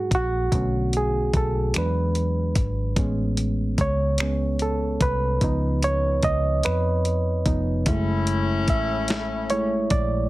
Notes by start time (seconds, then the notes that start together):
Already playing: F#3 G#3 D#4 F#4 G#4
0.11 A#1 F#4, kick, closed hi-hat
0.52 B1 D3 A3 C#4, kick, closed hi-hat
0.93 G#4, closed hi-hat
1.33 B1 A4, kick, closed hi-hat
1.74 E2 F#3 G#3 D4, finger snap, closed hi-hat
1.78 B4
2.15 closed hi-hat
2.55 G#1, kick, closed hi-hat
2.96 A1 G#3 B3 C#4, kick, closed hi-hat
3.37 closed hi-hat
3.78 C#2 C#5, kick, closed hi-hat
4.18 G#3 B3 C#4, finger snap, closed hi-hat
4.59 A4, closed hi-hat
5.01 C2 B4, kick, closed hi-hat
5.41 C#2 F3 B3 D#4, kick, closed hi-hat
5.83 C#5, closed hi-hat
6.23 C#2 D#5, kick, closed hi-hat
6.63 F2 B4, finger snap, closed hi-hat
7.05 closed hi-hat
7.46 F1 F3 B3 D#4, kick, closed hi-hat
7.86 F#1 G#3 A3 C#4 E4, kick, closed hi-hat
8.27 closed hi-hat
8.68 A1 E5, kick, closed hi-hat
9.08 snare, closed hi-hat
9.50 G#3 A3 E4 C#5, closed hi-hat
9.90 A#1 D5, kick, closed hi-hat